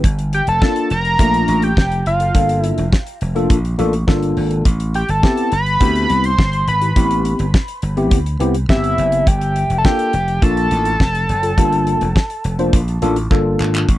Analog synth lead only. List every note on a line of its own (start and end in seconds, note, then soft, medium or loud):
0.34 0.47 G5 medium
0.49 0.88 A5 loud
0.91 1.65 A#5 loud
1.63 2.06 G5 loud
2.07 2.63 F5 medium
2.63 2.89 E5 medium
4.95 5.12 G5 medium
5.10 5.53 A5 medium
5.53 6.27 B5 loud
6.25 6.68 C6 loud
6.68 7.50 B5 loud
8.70 9.29 E5 loud
9.28 9.78 G5 loud
9.78 9.87 A5 medium
9.85 10.45 G5 loud
10.43 13.31 A5 loud